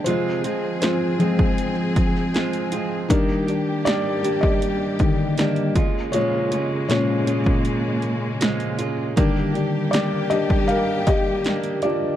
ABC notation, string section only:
X:1
M:4/4
L:1/8
Q:1/4=79
K:Eb
V:1 name="String section"
[F,CA]8 | [G,B,G]6- [G,B,G] [_D,A,B,]- | [_D,A,B,]8 | [G,B,G]8 |]